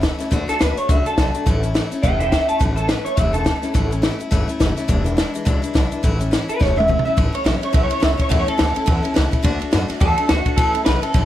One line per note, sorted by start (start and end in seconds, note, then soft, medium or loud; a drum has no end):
0.01 0.19 E3 medium
0.01 0.20 A3 medium
0.01 0.18 C#4 medium
0.01 0.17 E4 medium
0.01 kick medium
0.01 snare loud
0.01 closed hi-hat medium
0.18 0.30 A3 medium
0.18 0.32 C#4 medium
0.18 0.31 E4 medium
0.18 muted upright bass stroke medium
0.18 snare soft
0.18 closed hi-hat medium
0.31 0.44 D2 medium
0.31 0.48 D3 medium
0.31 0.49 A3 medium
0.31 0.48 D4 medium
0.31 0.47 F#4 medium
0.31 kick loud
0.31 snare soft
0.31 closed hi-hat medium
0.48 0.59 A3 soft
0.48 0.60 D4 soft
0.48 0.60 F#4 medium
0.48 0.60 A4 loud
0.48 muted upright bass stroke medium
0.48 snare soft
0.48 closed hi-hat medium
0.59 0.75 D2 medium
0.59 0.77 D3 medium
0.59 0.78 A3 medium
0.59 0.77 D4 medium
0.59 0.76 F#4 medium
0.59 0.77 B4 medium
0.59 snare loud
0.59 closed hi-hat medium
0.77 0.88 A3 soft
0.77 0.89 D4 soft
0.77 0.89 F#4 medium
0.77 0.89 C#5 medium
0.77 muted upright bass stroke medium
0.77 closed hi-hat medium
0.89 1.04 C#2 medium
0.89 1.06 D3 medium
0.89 1.06 A3 medium
0.89 1.06 D4 medium
0.89 1.05 F#4 medium
0.89 1.06 E5 medium
0.89 kick loud
0.89 closed hi-hat medium
1.06 1.18 A3 soft
1.06 1.19 D4 soft
1.06 1.18 F#4 medium
1.06 1.89 A4 loud
1.06 closed hi-hat medium
1.18 1.32 B1 medium
1.18 1.35 D3 medium
1.18 1.35 A3 medium
1.18 1.34 D4 medium
1.18 1.33 F#4 medium
1.18 kick medium
1.18 snare loud
1.18 closed hi-hat medium
1.34 1.46 A3 soft
1.34 1.46 D4 soft
1.34 1.46 F#4 medium
1.34 closed hi-hat medium
1.46 1.78 A1 medium
1.46 1.63 A2 medium
1.46 1.63 E3 medium
1.46 1.63 A3 medium
1.46 1.63 C#4 medium
1.46 1.62 E4 medium
1.46 kick loud
1.46 snare soft
1.46 closed hi-hat medium
1.63 1.74 A3 soft
1.63 1.75 C#4 medium
1.63 1.75 E4 medium
1.63 closed hi-hat medium
1.74 1.91 E3 medium
1.74 1.92 A3 medium
1.74 1.91 C#4 medium
1.74 1.90 E4 medium
1.74 snare loud
1.74 closed hi-hat medium
1.91 2.03 A3 soft
1.91 2.03 C#4 medium
1.91 2.03 E4 medium
1.91 muted upright bass stroke medium
1.91 closed hi-hat medium
2.03 2.35 E1 medium
2.03 2.20 A2 medium
2.03 2.21 E3 medium
2.03 2.21 A3 medium
2.03 2.20 C#4 medium
2.03 2.19 E4 medium
2.03 2.18 E5 medium
2.03 2.19 G5 medium
2.03 kick loud
2.03 closed hi-hat medium
2.20 2.32 A3 soft
2.20 2.32 C#4 medium
2.20 2.32 E4 medium
2.20 2.30 E5 medium
2.20 2.30 G5 medium
2.20 closed hi-hat medium
2.31 2.49 E3 medium
2.31 2.50 A3 medium
2.31 2.48 C#4 medium
2.31 2.47 E4 medium
2.31 2.47 E5 medium
2.31 2.48 G5 medium
2.31 kick medium
2.31 snare loud
2.31 closed hi-hat medium
2.48 2.59 A3 soft
2.48 2.60 C#4 soft
2.48 2.60 E4 soft
2.48 2.59 E5 medium
2.48 2.60 A5 medium
2.48 muted upright bass stroke medium
2.48 closed hi-hat medium
2.59 2.93 A1 medium
2.59 2.77 A2 medium
2.59 2.77 E3 medium
2.59 2.77 A3 medium
2.59 2.77 C#4 medium
2.59 2.75 E4 medium
2.59 kick loud
2.59 closed hi-hat medium
2.76 2.88 A3 soft
2.76 2.89 C#4 soft
2.76 2.89 E4 medium
2.76 2.88 A4 medium
2.76 closed hi-hat medium
2.88 3.06 E3 medium
2.88 3.06 A3 medium
2.88 3.05 C#4 medium
2.88 3.04 E4 medium
2.88 3.05 B4 medium
2.88 snare loud
2.88 closed hi-hat medium
3.05 3.17 A3 soft
3.05 3.17 C#4 soft
3.05 3.17 E4 soft
3.05 3.16 C#5 medium
3.05 muted upright bass stroke medium
3.05 closed hi-hat medium
3.16 3.50 E1 medium
3.16 3.35 A2 medium
3.16 3.35 E3 medium
3.16 3.34 A3 medium
3.16 3.33 C#4 medium
3.16 3.32 E4 medium
3.16 3.33 E5 medium
3.16 kick loud
3.16 snare soft
3.16 closed hi-hat medium
3.33 3.45 A3 soft
3.33 3.45 C#4 soft
3.33 3.46 E4 medium
3.33 4.17 A4 medium
3.33 closed hi-hat medium
3.45 3.62 E3 medium
3.45 3.63 A3 medium
3.45 3.61 E4 medium
3.45 kick medium
3.45 snare loud
3.45 closed hi-hat medium
3.62 3.73 A3 soft
3.62 3.73 C#4 medium
3.62 3.74 E4 soft
3.62 muted upright bass stroke medium
3.62 snare soft
3.62 closed hi-hat medium
3.74 4.07 A1 medium
3.74 3.91 A2 medium
3.74 3.91 E3 medium
3.74 3.92 A3 loud
3.74 3.91 C#4 medium
3.74 3.90 E4 medium
3.74 kick loud
3.74 snare soft
3.74 closed hi-hat medium
3.91 4.01 A3 soft
3.91 4.02 C#4 medium
3.91 4.03 E4 medium
3.91 closed hi-hat medium
4.02 4.20 E3 medium
4.02 4.20 A3 medium
4.02 4.19 C#4 medium
4.02 4.18 E4 medium
4.02 snare loud
4.02 closed hi-hat medium
4.19 4.30 A3 medium
4.19 4.30 C#4 medium
4.19 4.31 E4 medium
4.19 closed hi-hat medium
4.31 4.46 G1 medium
4.31 4.48 A2 medium
4.31 4.48 E3 medium
4.31 4.49 A3 medium
4.31 4.48 C#4 medium
4.31 4.46 E4 medium
4.31 kick loud
4.31 snare soft
4.31 closed hi-hat medium
4.48 4.59 A3 soft
4.48 4.60 C#4 medium
4.48 4.60 E4 medium
4.48 muted upright bass stroke medium
4.48 closed hi-hat medium
4.60 4.75 F#1 medium
4.60 4.77 E3 medium
4.60 4.77 A3 medium
4.60 4.76 C#4 medium
4.60 4.75 E4 medium
4.60 kick medium
4.60 snare loud
4.60 closed hi-hat medium
4.77 4.88 A3 soft
4.77 4.89 C#4 medium
4.77 4.88 E4 medium
4.77 muted upright bass stroke medium
4.77 snare soft
4.77 closed hi-hat medium
4.88 5.21 E1 medium
4.88 5.05 E2 medium
4.88 5.06 B2 medium
4.88 5.06 E3 medium
4.88 5.05 G#3 medium
4.88 5.04 D4 medium
4.88 5.03 E4 medium
4.88 kick loud
4.88 closed hi-hat medium
5.04 5.15 E3 soft
5.04 5.17 G#3 soft
5.04 5.17 D4 medium
5.04 5.17 E4 medium
5.04 closed hi-hat medium
5.17 5.34 E3 medium
5.17 5.34 G#3 medium
5.17 5.33 D4 medium
5.17 5.33 E4 medium
5.17 snare loud
5.17 closed hi-hat medium
5.34 5.45 E3 medium
5.34 5.45 G#3 medium
5.34 5.45 D4 medium
5.34 5.45 E4 medium
5.34 muted upright bass stroke medium
5.34 closed hi-hat medium
5.45 5.61 C#2 medium
5.45 5.63 E2 medium
5.45 5.63 B2 medium
5.45 5.63 E3 medium
5.45 5.63 G#3 medium
5.45 5.62 D4 medium
5.45 5.61 E4 medium
5.45 kick loud
5.45 closed hi-hat medium
5.62 5.73 E3 soft
5.62 5.73 G#3 medium
5.62 5.74 D4 medium
5.62 5.74 E4 medium
5.62 muted upright bass stroke medium
5.62 closed hi-hat medium
5.74 5.89 B1 medium
5.74 5.91 E3 medium
5.74 5.92 G#3 medium
5.74 5.91 D4 medium
5.74 5.90 E4 medium
5.74 kick medium
5.74 snare loud
5.74 closed hi-hat medium
5.91 6.02 E3 medium
5.91 6.03 G#3 medium
5.91 6.04 D4 medium
5.91 6.03 E4 medium
5.91 muted upright bass stroke medium
5.91 closed hi-hat medium
6.03 6.35 A1 medium
6.03 6.20 A2 medium
6.03 6.20 E3 medium
6.03 6.20 A3 medium
6.03 6.20 C#4 medium
6.03 6.18 E4 medium
6.03 kick loud
6.03 closed hi-hat medium
6.20 6.31 A3 soft
6.20 6.32 C#4 medium
6.20 6.32 E4 medium
6.20 closed hi-hat medium
6.31 6.48 E3 medium
6.31 6.49 A3 medium
6.31 6.48 C#4 medium
6.31 6.47 E4 medium
6.31 snare loud
6.31 closed hi-hat medium
6.49 6.59 A3 soft
6.49 6.60 C#4 medium
6.49 6.60 E4 medium
6.49 6.61 B4 medium
6.49 muted upright bass stroke medium
6.49 closed hi-hat medium
6.59 6.93 E1 medium
6.59 6.77 A2 medium
6.59 6.77 E3 medium
6.59 6.77 A3 medium
6.59 6.77 C#4 medium
6.59 6.75 E4 medium
6.59 6.77 C#5 medium
6.59 kick loud
6.59 snare medium
6.76 6.87 A3 soft
6.76 6.88 C#4 medium
6.76 6.88 E4 medium
6.76 7.04 E5 medium
6.80 high tom medium
6.88 7.05 E3 medium
6.88 7.06 A3 medium
6.88 7.05 C#4 medium
6.88 7.04 E4 medium
6.88 kick medium
6.88 mid tom medium
6.99 mid tom medium
7.05 7.16 A3 soft
7.05 7.17 C#4 soft
7.05 7.17 E4 medium
7.05 7.17 E5 medium
7.05 muted upright bass stroke medium
7.17 7.32 A1 medium
7.17 7.34 A2 medium
7.17 7.34 E3 medium
7.17 7.34 A3 medium
7.17 7.33 C#4 medium
7.17 7.31 E4 medium
7.17 kick loud
7.17 ride medium
7.32 7.44 A3 soft
7.32 7.45 C#4 medium
7.32 7.45 E4 medium
7.32 7.45 C#5 medium
7.32 muted upright bass stroke medium
7.32 ride medium
7.44 7.61 A#1 loud
7.44 7.62 E3 medium
7.44 7.62 A3 medium
7.44 7.61 C#4 medium
7.44 7.60 E4 medium
7.44 7.55 E5 medium
7.44 snare loud
7.44 ride medium
7.55 7.63 C#5 medium
7.61 7.72 A3 soft
7.61 7.73 C#4 soft
7.61 7.73 E4 soft
7.61 7.74 C#5 medium
7.61 ride medium
7.73 7.91 B1 medium
7.73 7.90 A2 medium
7.73 7.90 E3 medium
7.73 7.91 A3 medium
7.73 7.90 C#4 medium
7.73 7.89 E4 medium
7.73 7.83 E5 medium
7.73 kick loud
7.73 ride medium
7.83 7.91 C#5 medium
7.90 8.00 A3 soft
7.90 8.01 C#4 medium
7.90 8.01 E4 medium
7.90 8.02 C#5 medium
7.90 ride medium
8.00 8.19 C#2 medium
8.00 8.18 E3 medium
8.00 8.18 A3 medium
8.00 8.17 C#4 medium
8.00 8.16 E4 medium
8.00 8.11 E5 medium
8.00 snare loud
8.00 ride medium
8.11 8.20 C#5 medium
8.17 8.29 A3 soft
8.17 8.29 C#4 medium
8.17 8.29 E4 medium
8.17 kick medium
8.17 ride medium
8.22 8.30 C#5 medium
8.29 8.47 E2 medium
8.29 8.47 A2 medium
8.29 8.47 E3 medium
8.29 8.47 A3 medium
8.29 8.46 C#4 medium
8.29 8.45 E4 medium
8.29 8.39 E5 medium
8.29 kick loud
8.29 ride medium
8.39 8.48 C#5 loud
8.46 8.57 A3 soft
8.46 8.58 C#4 medium
8.46 8.58 E4 medium
8.46 9.32 A4 medium
8.46 muted upright bass stroke medium
8.46 ride medium
8.58 8.76 D2 medium
8.58 8.75 E3 medium
8.58 8.76 A3 medium
8.58 8.75 C#4 medium
8.58 8.73 E4 medium
8.58 snare loud
8.58 ride medium
8.74 8.86 A3 soft
8.74 8.86 C#4 medium
8.74 8.86 E4 medium
8.74 muted upright bass stroke medium
8.74 ride medium
8.86 9.04 E2 medium
8.86 9.04 A2 medium
8.86 9.04 E3 medium
8.86 9.04 A3 medium
8.86 9.03 C#4 medium
8.86 9.01 E4 medium
8.86 kick loud
8.86 ride medium
9.03 9.14 A3 medium
9.03 9.14 C#4 medium
9.03 9.15 E4 medium
9.03 ride medium
9.14 9.33 C#2 medium
9.14 9.32 E3 medium
9.14 9.32 A3 medium
9.14 9.31 C#4 medium
9.14 9.30 E4 medium
9.14 snare loud
9.14 ride medium
9.31 9.42 A3 medium
9.31 9.44 C#4 medium
9.31 9.44 E4 medium
9.31 kick medium
9.31 ride medium
9.43 9.61 D2 medium
9.43 9.60 D3 medium
9.43 9.60 A3 medium
9.43 9.59 D4 loud
9.43 9.58 F#4 loud
9.43 kick loud
9.43 ride medium
9.59 9.71 A3 soft
9.59 9.72 D4 medium
9.59 9.72 F#4 medium
9.59 muted upright bass stroke medium
9.59 ride medium
9.72 9.89 F#2 medium
9.72 9.89 D3 medium
9.72 9.89 A3 medium
9.72 9.88 D4 medium
9.72 9.87 F#4 medium
9.72 snare loud
9.72 ride medium
9.88 9.99 A3 medium
9.88 10.00 D4 medium
9.88 10.00 F#4 medium
9.88 muted upright bass stroke medium
9.88 snare soft
9.88 ride medium
10.00 10.18 E2 medium
10.00 10.18 D3 medium
10.00 10.18 A3 medium
10.00 10.18 D4 medium
10.00 10.16 F#4 medium
10.00 10.29 A4 medium
10.00 kick loud
10.00 ride medium
10.17 10.28 A3 soft
10.17 10.29 D4 medium
10.17 10.29 F#4 medium
10.17 ride medium
10.29 10.45 D2 medium
10.29 10.46 A3 medium
10.29 10.46 D4 medium
10.29 10.57 F#4 loud
10.29 10.44 F#4 medium
10.29 snare loud
10.29 ride medium
10.45 10.58 A3 soft
10.45 10.58 D4 medium
10.45 10.58 F#4 medium
10.45 kick medium
10.45 ride medium
10.56 10.74 A1 medium
10.56 10.75 A2 medium
10.56 10.75 E3 medium
10.56 10.75 A3 medium
10.56 10.74 C#4 medium
10.56 10.73 E4 medium
10.56 10.85 A4 medium
10.56 kick loud
10.56 ride loud
10.74 10.86 A3 soft
10.74 10.86 C#4 medium
10.74 10.86 E4 medium
10.74 ride medium
10.85 11.02 B1 loud
10.85 11.03 E3 medium
10.85 11.03 A3 medium
10.85 11.02 C#4 medium
10.85 11.01 E4 medium
10.85 11.03 B4 medium
10.85 snare loud
10.85 ride medium
11.02 11.14 A3 soft
11.02 11.14 C#4 soft
11.02 11.14 E4 medium
11.02 11.25 A4 medium
11.02 ride medium
11.14 11.25 A1 medium
11.14 11.25 A2 medium
11.14 11.25 E3 medium
11.14 11.25 A3 medium
11.14 11.25 C#4 medium
11.14 11.25 E4 medium
11.14 kick loud
11.14 ride medium